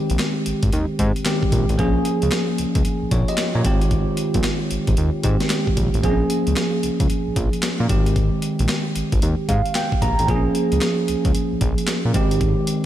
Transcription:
Already playing: D#3 G#3 C4 G4
0.10 A#1, closed hi-hat
0.19 snare, clap, closed hi-hat
0.46 G#1, closed hi-hat
0.63 G#1, kick, closed hi-hat
0.73 D#2, closed hi-hat
0.99 G#2, kick, closed hi-hat
1.16 closed hi-hat
1.25 D#3 G#3 C4 G4, snare, clap, closed hi-hat
1.43 kick
1.52 A#1, kick, closed hi-hat
1.69 A1, closed hi-hat
1.78 A#1 F3 A#3 C#4 G#4, kick, closed hi-hat
2.05 closed hi-hat
2.22 C#2, closed hi-hat
2.31 snare, clap, closed hi-hat
2.58 C#2, closed hi-hat
2.75 C#2, kick, closed hi-hat
2.85 closed hi-hat
3.02 A#1
3.11 A#1 F4 C#5, kick, closed hi-hat
3.28 G4 D#5, closed hi-hat
3.38 snare, clap, closed hi-hat
3.55 A#2 F4 C#5
3.64 G#1 D#3 G#3 C4 G4, kick, closed hi-hat
3.81 closed hi-hat
3.91 kick, closed hi-hat
4.17 closed hi-hat
4.34 A#1, kick, closed hi-hat
4.44 snare, clap, closed hi-hat
4.71 G#1, closed hi-hat
4.87 G#1, kick, closed hi-hat
4.97 D#2, closed hi-hat
5.23 G#2 D#3 G#3 C4 G4, kick, closed hi-hat
5.40 snare, closed hi-hat
5.50 snare, clap, closed hi-hat
5.67 kick
5.77 A#1, kick, closed hi-hat
5.94 A1, closed hi-hat
6.02 A#1 F3 A#3 C4 G#4, kick, closed hi-hat
6.10 C#4
6.30 closed hi-hat
6.47 C#2, closed hi-hat
6.56 snare, clap, closed hi-hat
6.83 C#2, closed hi-hat
7.00 C#2, kick, closed hi-hat
7.10 closed hi-hat
7.27 A#1
7.36 A#1, kick, closed hi-hat
7.53 closed hi-hat
7.63 snare, clap, closed hi-hat
7.80 A#2
7.88 G#1 D#3 G#3 C4 G4, kick, closed hi-hat
8.06 closed hi-hat
8.16 kick, closed hi-hat
8.42 closed hi-hat
8.59 A#1, closed hi-hat
8.69 snare, clap, closed hi-hat
8.96 G#1, closed hi-hat
9.12 G#1, kick, closed hi-hat
9.22 D#2, closed hi-hat
9.49 G#2 F5, kick, closed hi-hat
9.66 closed hi-hat
9.75 G5, snare, clap, closed hi-hat
9.92 kick
10.02 A#1 A#5, kick, closed hi-hat
10.19 A1, closed hi-hat
10.27 A#1 F3 A#3 C4 G#4, kick, closed hi-hat
10.35 C#4
10.55 closed hi-hat
10.72 C#2, closed hi-hat
10.81 snare, clap, closed hi-hat
11.08 C#2, closed hi-hat
11.25 C#2, kick, closed hi-hat
11.35 closed hi-hat
11.52 A#1
11.61 A#1, kick, closed hi-hat
11.78 closed hi-hat
11.87 snare, clap, closed hi-hat
12.05 A#2
12.13 G#1 D#3 G#3 C4 G4, kick, closed hi-hat
12.31 closed hi-hat
12.41 kick, closed hi-hat
12.67 closed hi-hat

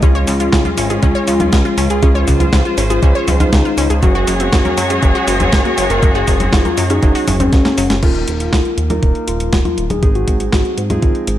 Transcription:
Already playing: G#3
0.02 C#2 G#3 C#4 F4 G#4, kick, closed hi-hat, cabasa
0.15 C#5, closed hi-hat, cabasa
0.27 C#2 C#3, open hi-hat, cabasa
0.40 F4, closed hi-hat, cabasa
0.52 C#2 C#3, kick, snare, closed hi-hat, cabasa
0.65 F4, closed hi-hat, high conga, cabasa
0.77 G#1 C#4, open hi-hat, cabasa
0.90 G#3 C#4 F4 G#4, closed hi-hat, cabasa
1.03 C#2 C#4, kick, closed hi-hat, cabasa
1.15 C#5, closed hi-hat, cabasa
1.28 C#2 C#3 F4, open hi-hat, cabasa
1.40 F4, closed hi-hat, high conga, cabasa
1.53 C#2 C#3, kick, snare, closed hi-hat, cabasa
1.65 F4, closed hi-hat, cabasa
1.77 C#2 C#4, open hi-hat, cabasa
1.90 C#2 G#4, closed hi-hat, cabasa
2.03 C#2 G#3 C#4 F4 G#4 C5, kick, closed hi-hat, cabasa
2.15 F4 C#5, closed hi-hat, cabasa
2.28 C#2 C#3, kick, open hi-hat, cabasa
2.40 F4, closed hi-hat, high conga, cabasa
2.52 C#2 C#3 F4, kick, snare, closed hi-hat, cabasa
2.65 F4, closed hi-hat, cabasa
2.77 G#1 C#4, open hi-hat, cabasa
2.90 G#3 C#4 F4 G#4, closed hi-hat, cabasa
3.02 C#2 C#4, kick, closed hi-hat, cabasa
3.15 C#5, closed hi-hat, cabasa
3.28 C#2 C#3, open hi-hat, high conga, cabasa
3.40 D#4 F4, closed hi-hat, high conga, cabasa
3.53 C#2 C#3, kick, snare, closed hi-hat, cabasa
3.65 F4, closed hi-hat, cabasa
3.77 C#2 C#4, open hi-hat, cabasa
3.90 C#2 G#4, closed hi-hat, cabasa
4.03 F#1 F#3 G#3 C#4 F#4 G#4 C#5, kick, closed hi-hat, cabasa
4.15 F#4, closed hi-hat, cabasa
4.28 F#1 F#2, open hi-hat, cabasa
4.40 C4 F#4, closed hi-hat, cabasa
4.53 F#1 F#2, kick, snare, closed hi-hat, cabasa
4.65 A#3, closed hi-hat, high conga, cabasa
4.77 F#2 F#3, open hi-hat, cabasa
4.90 G#3 C#4 F#4 G#4, closed hi-hat, cabasa
5.03 F#1 F#3, kick, closed hi-hat, cabasa
5.15 F#4, closed hi-hat, cabasa
5.27 F#1 F#2 F#4, open hi-hat, cabasa
5.40 C4, closed hi-hat, high conga, cabasa
5.53 F#1 F#2, kick, snare, closed hi-hat, cabasa
5.65 A#3 F#4, closed hi-hat, cabasa
5.77 F#1 F#3, open hi-hat, cabasa
5.90 F#1 C#4 A#4, closed hi-hat, cabasa
6.03 F#1 F#3 G#3 C#4 F#4 G#4, kick, closed hi-hat, cabasa
6.15 F#4 G#4, closed hi-hat, cabasa
6.28 F#1 F#2, kick, open hi-hat, cabasa
6.40 C4, closed hi-hat, high conga, cabasa
6.53 F#1 F#2 F4, kick, snare, closed hi-hat, cabasa
6.65 A#3, closed hi-hat, high conga, cabasa
6.77 F#2 F#3, open hi-hat, cabasa
6.90 G#3 C#4 D#4 F#4 G#4, closed hi-hat, cabasa
7.03 F#1 F#3, kick, closed hi-hat, cabasa
7.15 F#4, open hi-hat, cabasa
7.28 F#1 F#2, open hi-hat, high conga, cabasa
7.40 C4 C#4, closed hi-hat, high conga, cabasa
7.53 F#1 F#2, kick, snare, closed hi-hat, cabasa
7.65 A#3, snare, closed hi-hat, cabasa
7.78 F#1 F#3, open hi-hat, cabasa
7.90 F#1 C#4, snare, closed hi-hat, cabasa
8.02 D#1 A#3 D#4 F4 A#4, kick, closed hi-hat, crash
8.15 closed hi-hat
8.28 D#1, closed hi-hat
8.40 F4, closed hi-hat
8.53 D#1, kick, snare, closed hi-hat
8.65 closed hi-hat
8.78 D#2, closed hi-hat
8.90 A#3 D#4 F4 A#4, closed hi-hat, high conga
9.03 D#1, kick, closed hi-hat
9.15 closed hi-hat
9.28 D#1 F4, closed hi-hat
9.40 closed hi-hat
9.53 D#1, kick, snare, closed hi-hat
9.65 F4, closed hi-hat, high conga
9.78 D#1, closed hi-hat
9.90 D#1 G#4, closed hi-hat, high conga
10.03 G#1 G#3 C4 D#4 G#4, kick, closed hi-hat
10.15 F#4, closed hi-hat
10.28 G#1, kick, closed hi-hat
10.40 closed hi-hat
10.53 G#1 F#4, kick, snare, closed hi-hat
10.65 closed hi-hat
10.78 G#2, closed hi-hat
10.90 G#3 C4 D#4 F4 G#4, closed hi-hat, high conga
11.02 G#1, kick, closed hi-hat
11.15 closed hi-hat
11.27 G#1, closed hi-hat

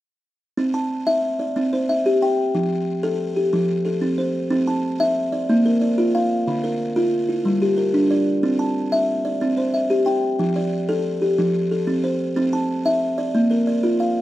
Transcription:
0.57 C4
0.74 A5
1.07 E5
1.39 D5
1.56 C4
1.73 C5
1.89 E5
2.06 G4
2.22 G5
2.55 F3
3.03 A4
3.36 G4
3.53 F3
3.85 A4
4.02 C4
4.18 C5
4.51 C4
4.67 A5
5.00 E5
5.32 D5
5.50 A#3
5.66 A#4
5.81 D5
5.98 F4
6.15 F5
6.48 D3
6.64 A#4
6.96 F4
7.29 E4
7.45 G3
7.62 G4
7.78 A#4
7.94 D4
8.11 D5
8.43 C4
8.59 A5
8.92 E5
9.25 D5
9.41 C4
9.57 C5
9.74 E5
9.90 G4
10.06 G5
10.39 F3
10.56 D5
10.89 A4
11.22 G4
11.38 F3
11.71 A4
11.87 C4
12.04 C5
12.36 C4
12.53 A5
12.86 E5
13.18 D5
13.35 A#3
13.51 A#4
13.67 D5
13.83 F4
14.00 F5

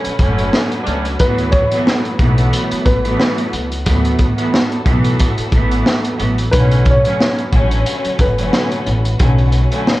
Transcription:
Already playing: B2 D3 F#3 A3 C#4 F#4 B4
0.05 muted upright bass stroke, closed hi-hat
0.19 F#1 D3 F#3 A3 C#4, kick, closed hi-hat
0.38 closed hi-hat
0.53 snare
0.72 closed hi-hat
0.83 C#2 F#3 A3 C#4 D4, closed hi-hat
1.05 closed hi-hat
1.19 D2 E3 F#3 A3 B3 B4, kick, closed hi-hat
1.38 closed hi-hat
1.51 C#5, kick, closed hi-hat
1.71 E3 F#3 A3 B3, closed hi-hat
1.87 snare
2.05 closed hi-hat
2.19 B1 E3 F#3 A3 B3, kick, closed hi-hat
2.38 closed hi-hat
2.53 closed hi-hat
2.71 muted upright bass stroke, closed hi-hat
2.85 A1 B4, kick, closed hi-hat
3.04 E3 F#3 A3 B3, closed hi-hat
3.20 snare
3.38 closed hi-hat
3.53 C#2, closed hi-hat
3.72 closed hi-hat
3.86 D2 E3 F#3 A3 B3 A4, kick, closed hi-hat
4.05 closed hi-hat
4.19 kick, closed hi-hat
4.36 E3 F#3 A3 B3, closed hi-hat
4.54 snare
4.72 closed hi-hat
4.85 B1 E3 F#3 A3 B3, kick, closed hi-hat
5.04 closed hi-hat
5.20 kick, closed hi-hat
5.38 muted upright bass stroke, closed hi-hat
5.52 A1 E3 F#3 A3 B3, kick, closed hi-hat
5.72 closed hi-hat
5.86 snare
6.05 closed hi-hat
6.18 A1 E3 F#3 A3 B3, closed hi-hat
6.38 closed hi-hat
6.51 B1 B2 D3 F#3 A3 C#4 F#4 B4, kick, closed hi-hat
6.71 closed hi-hat
6.85 kick, closed hi-hat
6.90 C#5
7.03 D3 F#3 A3 C#4, closed hi-hat
7.20 snare
7.38 closed hi-hat
7.52 A1 D3 F#3 A3 C#4, kick, closed hi-hat
7.71 closed hi-hat
7.86 closed hi-hat
8.05 muted upright bass stroke, closed hi-hat
8.19 F#1 B4, kick, closed hi-hat
8.37 D3 F#3 A3 C#4, closed hi-hat
8.53 snare
8.71 closed hi-hat
8.86 A1, closed hi-hat
9.05 closed hi-hat
9.19 B1 D3 F#3 A3 C#4, kick, closed hi-hat
9.38 closed hi-hat
9.52 closed hi-hat
9.70 D3 F#3 A3 C#4, closed hi-hat
9.87 snare

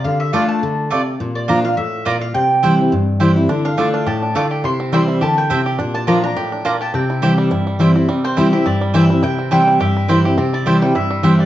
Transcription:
0.04 D3 F5
0.20 E5
0.33 D3 A3 D4 F4 D5 F5 A5
0.49 A5
0.63 D3
0.90 C3 A3 F4 D5 A5
1.20 A#2
1.35 D5
1.48 F3 A#3 D4 F4 D5 A#5
1.64 D4 F4 F5
1.77 A2 E5
2.05 A#2 A#3 F4 D5 A#5
2.21 F5
2.34 C3 G5
2.63 E3 G3 C4 E4 C5 G5
2.79 C4 E4
2.92 G2
3.20 E3 G3 C4 E4 C5 G5
3.36 C4 E4
3.49 D3 D4
3.65 D4 F5
3.77 D3 A3 D4 F4 D5 A5
3.94 D4 F5
4.06 A2 G4 A5
4.22 D4
4.35 D3 A3 D4 F4 D5 A5 D6
4.51 G4
4.64 C3 E4 C6
4.80 C4
4.92 E3 G3 C4 E4 C5 G5 C6
5.08 E4
5.21 D3 G4 A5
5.37 E4 G5
5.50 C3 C4 E4 C5 G5
5.66 G4
5.79 A#2 D4
5.94 D4 A5
6.07 F3 A#3 D4 F4 D5 A#5
6.23 D4 F4 A#5
6.36 A2 G4
6.52 D4
6.65 A#2 A#3 D4 F4 D5 F5 A#5
6.81 G4 A5
6.94 C3 C4 G5
7.10 E4
7.22 E3 G3 C4 E4 G4 C5 G5
7.38 G3
7.51 G2 E4
7.67 G3
7.79 E3 G3 C4 E4 C5 G5
7.95 C4 E4
8.09 C3 G3
8.24 C4 C5
8.37 E3 G3 C4 E4 C5 G5
8.52 C4 E4 G4 E5
8.66 G2 E4 D5
8.81 G3
8.94 E3 G3 C4 E4 C5 E5 G5
9.10 C4 E4
9.23 C3 E4 G5
9.39 C4
9.51 E3 G3 C4 E4 C5 G5
9.68 E4
9.80 G2 G4 E5
9.97 E4
10.08 E3 G3 C4 E4 C5 G5
10.24 C4 E4 G4
10.38 C3 C4
10.53 E4 D5
10.66 E3 G3 C4 E4 G4 C5 G5
10.81 G3 C4 E4 G5
10.95 G2 E4 E5
11.11 G3
11.23 E3 G3 C4 E4 C5 G5
11.39 C4 D5

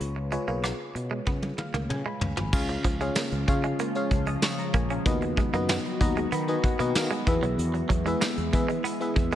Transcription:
Already playing: C#3 F4 G#4 B4 C#5
0.00 C#2, closed hi-hat
0.16 muted clean electric guitar stroke
0.31 G#3 F4 G#4 B4 C#5, closed hi-hat
0.48 B1 A#3 F4 G#4 B4 C#5
0.64 B3, cross-stick, closed hi-hat
0.95 B2, muted clean electric guitar stroke, closed hi-hat
1.11 G#3
1.26 C#3 B3, kick, high tom
1.42 high tom
1.58 F5, muted clean electric guitar stroke, mid tom
1.74 C#2 A#3, mid tom
1.89 C#3 G#5, mid tom
2.06 G#3 B5
2.21 C#2, muted clean electric guitar stroke, floor tom
2.37 G#1 F3, floor tom
2.53 C#2 C#3 F3 G#3 C#4 F4 G#4 C#5 F5, kick, crash
2.69 muted clean electric guitar stroke, closed hi-hat
2.84 C#2 F3, kick, closed hi-hat
3.00 G#3 C#4 F4 G#4 C#5 F5, closed hi-hat
3.15 A#3, snare, tambourine
3.31 C#2, closed hi-hat
3.48 C#3 C#4 F4 G#4 C#5 F5, muted clean electric guitar stroke, kick, closed hi-hat
3.64 G#3, closed hi-hat
3.79 A#3, closed hi-hat
3.95 C#4 F4 G#4 C#5 F5, closed hi-hat
4.11 C#2, muted clean electric guitar stroke, kick, closed hi-hat
4.26 G#3 D#6, closed hi-hat
4.42 C#6, muted clean electric guitar stroke, snare, tambourine
4.58 A#5, closed hi-hat
4.74 A#1 A#3 G#5, kick, closed hi-hat
4.90 C#4 F5, closed hi-hat
5.05 D#2 D#3 F#3 B3 D#4 F#4 B4 D#5, kick, closed hi-hat
5.22 muted clean electric guitar stroke, closed hi-hat
5.37 G#3, kick, closed hi-hat
5.53 F#2 A#3 B3 D#4 F#4 B4 D#5, closed hi-hat
5.69 B3, snare, tambourine
5.85 closed hi-hat
6.01 D#2 B3 D#4 F#4 B4 D#5 A#5, muted clean electric guitar stroke, kick, closed hi-hat
6.16 G#3, closed hi-hat
6.32 D#3 B3 B5, closed hi-hat
6.48 B3 D#4 F#4 B4 D#5 G#5, closed hi-hat
6.64 F#5, muted clean electric guitar stroke, kick, closed hi-hat
6.79 B2 A#3 B3 D#4 F#4 B4 D#5, closed hi-hat
6.95 D#3 F5, snare, tambourine
7.11 G#3 D#5, closed hi-hat
7.27 E2 E3 G#3 B3 E4 G#4 B4 E5, muted clean electric guitar stroke, kick, closed hi-hat
7.42 B1 F#3, closed hi-hat
7.58 E2, closed hi-hat
7.74 muted clean electric guitar stroke, closed hi-hat
7.89 E2 F#3, kick, closed hi-hat
8.06 G#3 B3 E4 G#4 B4 E5, closed hi-hat
8.21 A#3, snare, tambourine
8.37 E2, closed hi-hat
8.53 E3 B3 E4 G#4 B4 E5, muted clean electric guitar stroke, kick, closed hi-hat
8.68 G#3, closed hi-hat
8.84 B3, closed hi-hat
9.01 B3 E4 G#4 B4 E5, closed hi-hat
9.16 E2, muted clean electric guitar stroke, kick, closed hi-hat
9.32 closed hi-hat

